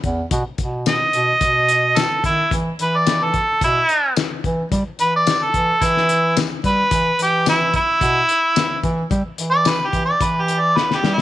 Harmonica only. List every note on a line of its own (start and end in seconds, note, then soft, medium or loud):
0.88 2.00 D#5 loud
1.98 2.24 A4 medium
2.26 2.51 E4 medium
2.82 2.98 B4 medium
2.96 3.26 D5 medium
3.24 3.62 A4 medium
3.64 4.16 E4 medium
5.01 5.14 B4 medium
5.16 5.45 D5 medium
5.44 5.86 A4 medium
5.84 6.36 E4 medium
6.66 7.18 B4 loud
7.23 7.47 G4 medium
7.49 7.74 E4 loud
7.76 8.81 E4 loud
9.51 9.71 D5 loud
9.69 9.88 B4 loud
9.87 10.03 G4 medium
10.05 10.25 D5 medium
10.24 10.43 B4 medium
10.42 10.61 G4 medium
10.60 10.79 D5 loud
10.78 10.98 B4 medium
10.97 11.16 G4 medium
11.14 11.22 E4 medium